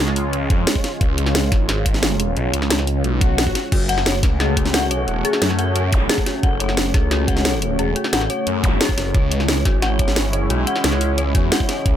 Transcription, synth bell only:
0, 0, Header, 1, 2, 480
1, 0, Start_track
1, 0, Key_signature, 3, "minor"
1, 0, Tempo, 338983
1, 1430, Time_signature, 4, 2, 24, 8
1, 16944, End_track
2, 0, Start_track
2, 0, Title_t, "Synth bell"
2, 0, Program_c, 0, 98
2, 5270, Note_on_c, 0, 66, 83
2, 5397, Note_off_c, 0, 66, 0
2, 5510, Note_on_c, 0, 78, 103
2, 5586, Note_off_c, 0, 78, 0
2, 5750, Note_on_c, 0, 73, 76
2, 5877, Note_off_c, 0, 73, 0
2, 6230, Note_on_c, 0, 68, 98
2, 6356, Note_off_c, 0, 68, 0
2, 6470, Note_on_c, 0, 66, 76
2, 6596, Note_off_c, 0, 66, 0
2, 6710, Note_on_c, 0, 78, 102
2, 6786, Note_off_c, 0, 78, 0
2, 6949, Note_on_c, 0, 73, 77
2, 7076, Note_off_c, 0, 73, 0
2, 7430, Note_on_c, 0, 68, 107
2, 7556, Note_off_c, 0, 68, 0
2, 7669, Note_on_c, 0, 66, 76
2, 7796, Note_off_c, 0, 66, 0
2, 7909, Note_on_c, 0, 78, 102
2, 7985, Note_off_c, 0, 78, 0
2, 8150, Note_on_c, 0, 73, 81
2, 8276, Note_off_c, 0, 73, 0
2, 8630, Note_on_c, 0, 68, 101
2, 8756, Note_off_c, 0, 68, 0
2, 8870, Note_on_c, 0, 66, 78
2, 8996, Note_off_c, 0, 66, 0
2, 9110, Note_on_c, 0, 78, 99
2, 9186, Note_off_c, 0, 78, 0
2, 9350, Note_on_c, 0, 73, 79
2, 9476, Note_off_c, 0, 73, 0
2, 9830, Note_on_c, 0, 68, 104
2, 9956, Note_off_c, 0, 68, 0
2, 10069, Note_on_c, 0, 66, 84
2, 10196, Note_off_c, 0, 66, 0
2, 10310, Note_on_c, 0, 78, 102
2, 10386, Note_off_c, 0, 78, 0
2, 10550, Note_on_c, 0, 73, 79
2, 10676, Note_off_c, 0, 73, 0
2, 11030, Note_on_c, 0, 68, 99
2, 11156, Note_off_c, 0, 68, 0
2, 11270, Note_on_c, 0, 66, 81
2, 11396, Note_off_c, 0, 66, 0
2, 11510, Note_on_c, 0, 78, 101
2, 11586, Note_off_c, 0, 78, 0
2, 11750, Note_on_c, 0, 73, 80
2, 11876, Note_off_c, 0, 73, 0
2, 12230, Note_on_c, 0, 73, 75
2, 12306, Note_off_c, 0, 73, 0
2, 12469, Note_on_c, 0, 68, 98
2, 12546, Note_off_c, 0, 68, 0
2, 12949, Note_on_c, 0, 73, 82
2, 13076, Note_off_c, 0, 73, 0
2, 13430, Note_on_c, 0, 73, 78
2, 13506, Note_off_c, 0, 73, 0
2, 13670, Note_on_c, 0, 66, 79
2, 13796, Note_off_c, 0, 66, 0
2, 13910, Note_on_c, 0, 78, 101
2, 13986, Note_off_c, 0, 78, 0
2, 14150, Note_on_c, 0, 73, 78
2, 14276, Note_off_c, 0, 73, 0
2, 14631, Note_on_c, 0, 73, 77
2, 14706, Note_off_c, 0, 73, 0
2, 14871, Note_on_c, 0, 66, 82
2, 14997, Note_off_c, 0, 66, 0
2, 15110, Note_on_c, 0, 78, 104
2, 15186, Note_off_c, 0, 78, 0
2, 15351, Note_on_c, 0, 73, 77
2, 15477, Note_off_c, 0, 73, 0
2, 15830, Note_on_c, 0, 73, 83
2, 15906, Note_off_c, 0, 73, 0
2, 16070, Note_on_c, 0, 66, 77
2, 16196, Note_off_c, 0, 66, 0
2, 16311, Note_on_c, 0, 78, 106
2, 16386, Note_off_c, 0, 78, 0
2, 16550, Note_on_c, 0, 73, 81
2, 16677, Note_off_c, 0, 73, 0
2, 16944, End_track
0, 0, End_of_file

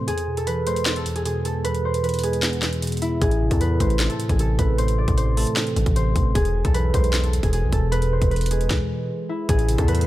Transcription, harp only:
0, 0, Header, 1, 2, 480
1, 0, Start_track
1, 0, Key_signature, 0, "minor"
1, 0, Tempo, 392157
1, 95, Time_signature, 4, 2, 24, 8
1, 12323, End_track
2, 0, Start_track
2, 0, Title_t, "Harp"
2, 0, Program_c, 0, 46
2, 0, Note_on_c, 0, 69, 76
2, 0, Note_on_c, 0, 72, 83
2, 0, Note_on_c, 0, 74, 79
2, 92, Note_on_c, 0, 68, 110
2, 165, Note_off_c, 0, 69, 0
2, 458, Note_on_c, 0, 69, 75
2, 532, Note_off_c, 0, 68, 0
2, 573, Note_on_c, 0, 71, 95
2, 646, Note_off_c, 0, 72, 0
2, 681, Note_off_c, 0, 74, 0
2, 816, Note_on_c, 0, 72, 92
2, 889, Note_off_c, 0, 71, 0
2, 1173, Note_off_c, 0, 69, 0
2, 1178, Note_on_c, 0, 69, 77
2, 1416, Note_on_c, 0, 68, 77
2, 1489, Note_off_c, 0, 69, 0
2, 1532, Note_off_c, 0, 68, 0
2, 1537, Note_on_c, 0, 68, 88
2, 1779, Note_on_c, 0, 69, 81
2, 1852, Note_off_c, 0, 68, 0
2, 2012, Note_on_c, 0, 71, 109
2, 2085, Note_off_c, 0, 72, 0
2, 2266, Note_on_c, 0, 72, 77
2, 2339, Note_off_c, 0, 71, 0
2, 2490, Note_on_c, 0, 71, 88
2, 2563, Note_off_c, 0, 72, 0
2, 2734, Note_on_c, 0, 68, 87
2, 2808, Note_off_c, 0, 69, 0
2, 3694, Note_on_c, 0, 64, 83
2, 3928, Note_off_c, 0, 68, 0
2, 3933, Note_on_c, 0, 68, 103
2, 4294, Note_on_c, 0, 69, 74
2, 4367, Note_off_c, 0, 68, 0
2, 4409, Note_off_c, 0, 71, 0
2, 4414, Note_on_c, 0, 71, 92
2, 4659, Note_on_c, 0, 72, 78
2, 4732, Note_off_c, 0, 71, 0
2, 5009, Note_off_c, 0, 69, 0
2, 5014, Note_on_c, 0, 69, 83
2, 5254, Note_on_c, 0, 68, 70
2, 5327, Note_off_c, 0, 69, 0
2, 5383, Note_on_c, 0, 69, 95
2, 5457, Note_off_c, 0, 68, 0
2, 5618, Note_on_c, 0, 71, 80
2, 5692, Note_off_c, 0, 72, 0
2, 5854, Note_on_c, 0, 72, 96
2, 5927, Note_off_c, 0, 71, 0
2, 6099, Note_on_c, 0, 74, 81
2, 6327, Note_off_c, 0, 72, 0
2, 6332, Note_on_c, 0, 72, 87
2, 6568, Note_off_c, 0, 69, 0
2, 6573, Note_on_c, 0, 69, 76
2, 6891, Note_off_c, 0, 64, 0
2, 7288, Note_off_c, 0, 72, 0
2, 7293, Note_on_c, 0, 72, 80
2, 7772, Note_on_c, 0, 68, 110
2, 7845, Note_off_c, 0, 69, 0
2, 8137, Note_on_c, 0, 69, 76
2, 8211, Note_off_c, 0, 68, 0
2, 8253, Note_on_c, 0, 71, 95
2, 8326, Note_off_c, 0, 72, 0
2, 8359, Note_off_c, 0, 74, 0
2, 8497, Note_on_c, 0, 72, 91
2, 8571, Note_off_c, 0, 71, 0
2, 8854, Note_off_c, 0, 69, 0
2, 8858, Note_on_c, 0, 69, 75
2, 9096, Note_on_c, 0, 68, 76
2, 9170, Note_off_c, 0, 69, 0
2, 9212, Note_off_c, 0, 68, 0
2, 9217, Note_on_c, 0, 68, 86
2, 9458, Note_on_c, 0, 69, 79
2, 9532, Note_off_c, 0, 68, 0
2, 9690, Note_on_c, 0, 71, 108
2, 9763, Note_off_c, 0, 72, 0
2, 9947, Note_on_c, 0, 72, 78
2, 10021, Note_off_c, 0, 71, 0
2, 10169, Note_on_c, 0, 71, 89
2, 10243, Note_off_c, 0, 72, 0
2, 10415, Note_on_c, 0, 68, 86
2, 10488, Note_off_c, 0, 69, 0
2, 11374, Note_on_c, 0, 64, 84
2, 11608, Note_off_c, 0, 68, 0
2, 11613, Note_on_c, 0, 68, 106
2, 11973, Note_on_c, 0, 69, 78
2, 12047, Note_off_c, 0, 68, 0
2, 12089, Note_off_c, 0, 71, 0
2, 12094, Note_on_c, 0, 71, 96
2, 12323, Note_off_c, 0, 64, 0
2, 12323, Note_off_c, 0, 69, 0
2, 12323, Note_off_c, 0, 71, 0
2, 12323, End_track
0, 0, End_of_file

